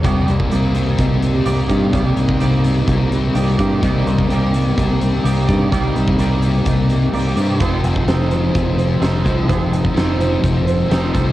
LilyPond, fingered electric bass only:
\new Staff \with { instrumentName = "Fingered electric bass" } { \clef bass \time 4/4 \key c \dorian \tempo 4 = 127 c,8 c,8 c,4 c,4 c,8 g,8 | c,8 c,8 c,4 c,4 c,8 g,8 | c,8 c,8 c,4 c,4 c,8 g,8 | c,8 c,8 c,4 c,4 c,8 g,8 |
f,,8 f,,8 f,,4 f,,4 f,,8 c,8 | f,,8 f,,8 f,,4 f,,4 f,,8 c,8 | }